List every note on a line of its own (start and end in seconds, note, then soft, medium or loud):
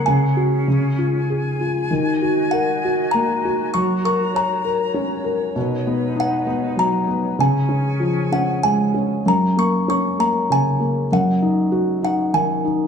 0.00 1.61 C#4 medium
0.00 1.65 G#4 medium
0.00 0.43 F#5 medium
0.06 0.66 C#3 medium
0.06 1.55 G#5 medium
0.37 0.66 F#4 medium
0.65 1.87 C#3 medium
0.65 3.70 G#5 medium
0.99 1.59 F4 soft
1.30 1.89 G#4 soft
1.61 1.90 F4 soft
1.89 3.70 D#3 medium
1.89 5.52 F#4 medium
1.89 3.72 D#5 medium
2.22 2.83 F#4 soft
2.51 3.71 A#4 medium
2.51 3.09 F#5 medium
2.85 3.43 F#4 soft
3.11 3.73 A#3 soft
3.11 3.75 A#5 medium
3.45 3.74 F#4 soft
3.74 5.52 F#3 medium
3.74 7.35 C#5 medium
3.74 5.54 A#5 medium
3.74 4.02 C#6 medium
4.04 4.63 A#4 soft
4.04 4.36 C#6 medium
4.35 5.52 C#5 soft
4.35 5.22 A#5 medium
4.65 5.23 A#4 soft
4.94 5.54 C#4 medium
5.24 5.54 A#4 medium
5.56 7.35 B2 medium
5.56 7.37 D#4 medium
5.56 7.37 B4 medium
5.87 6.45 B3 medium
6.16 7.35 D#4 medium
6.20 6.81 F#5 medium
6.47 7.06 B3 medium
6.76 7.37 F#3 medium
6.76 7.41 A#5 medium
7.07 7.38 B3 medium
7.38 9.22 C#3 medium
7.38 9.24 C#4 medium
7.38 9.24 G#4 medium
7.38 9.24 G#5 medium
7.38 8.60 G#5 medium
7.69 8.31 C#4 soft
8.00 9.22 F3 medium
8.32 8.93 C#4 soft
8.32 8.65 F#5 medium
8.63 9.25 G#3 soft
8.63 9.28 G#5 medium
8.94 9.25 C#4 soft
9.26 11.07 F#2 medium
9.26 9.59 A#5 medium
9.57 10.18 A#3 soft
9.57 9.87 C#6 medium
9.88 11.08 C#4 medium
9.88 10.21 C#6 medium
10.19 10.79 A#3 soft
10.19 10.51 A#5 medium
10.50 11.10 C#3 soft
10.50 11.08 G#5 medium
10.80 11.10 A#3 soft
11.12 12.87 F#2 medium
11.12 12.03 F#5 medium
11.42 12.01 D#4 soft
11.72 12.87 F#4 medium
12.03 12.63 D#4 soft
12.03 12.35 F#5 medium
12.34 12.87 D#3 soft
12.34 12.87 G#5 medium
12.65 12.87 D#4 soft